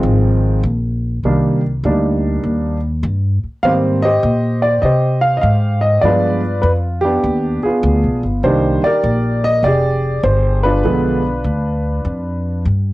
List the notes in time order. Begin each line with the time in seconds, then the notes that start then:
Already playing: D#3 F3 G#3 C4
0.03 G#1
0.63 A#1
1.23 C2 D#3 G3 A#3 D4
1.83 D2 G3 A#3 D4 D#4
2.43 D#2
3.03 G2
3.44 muted upright bass stroke
3.63 G#2 D#3 G3 A#3 C4 C5 F5
4.03 G4 C5 D#5
4.23 A#2
4.62 D5
4.82 C3 G4 C5 D#5
5.21 F5
5.37 D#5
5.41 G#2 F5
5.81 D#5
6.01 G2 F3 G#3 B3 D4 F4 B4 D5
6.62 F2 B4
7.01 B3 D4 G4
7.23 D#2
7.63 B3 F4 G#4, muted upright bass stroke
7.83 D2
8.04 B1
8.23 G1
8.43 C2 D#3 G3 A#3 D4 D#4 G4 C5
8.83 G4 A#4 D5, muted upright bass stroke
9.04 A#1
9.44 D#5
9.63 F1 G4 G#4 D5
10.23 G1 C5
10.63 D4 F4 B4
10.83 B1 D3 F3 G#3 B3
11.44 D2
12.05 F2
12.65 G2